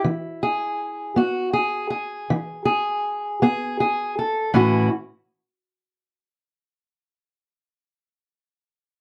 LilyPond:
\new Staff \with { instrumentName = "Steel-string acoustic guitar" } { \time 12/8 \key a \major \tempo 4. = 53 << { r8 gis'4 fis'8 gis'8 gis'4 gis'4 gis'8 gis'8 a'8 | <e cis' e' fis'>8 r1 r4. | } \\ { e4 r8 b4 r8 e4 r8 b4 r8 | a,8 r1 r4. | } >> }